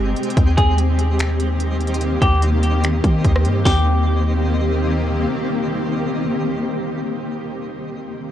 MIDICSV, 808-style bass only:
0, 0, Header, 1, 2, 480
1, 0, Start_track
1, 0, Key_signature, -3, "major"
1, 0, Tempo, 410959
1, 430, Time_signature, 4, 2, 24, 8
1, 9714, End_track
2, 0, Start_track
2, 0, Title_t, "808-style bass"
2, 0, Program_c, 0, 38
2, 0, Note_on_c, 0, 31, 104
2, 171, Note_off_c, 0, 31, 0
2, 430, Note_on_c, 0, 39, 110
2, 661, Note_off_c, 0, 39, 0
2, 671, Note_on_c, 0, 39, 103
2, 2544, Note_off_c, 0, 39, 0
2, 2591, Note_on_c, 0, 39, 105
2, 3513, Note_off_c, 0, 39, 0
2, 3550, Note_on_c, 0, 51, 100
2, 3781, Note_off_c, 0, 51, 0
2, 3792, Note_on_c, 0, 39, 113
2, 4032, Note_on_c, 0, 43, 100
2, 4049, Note_off_c, 0, 39, 0
2, 4259, Note_off_c, 0, 43, 0
2, 4271, Note_on_c, 0, 39, 112
2, 6144, Note_off_c, 0, 39, 0
2, 9714, End_track
0, 0, End_of_file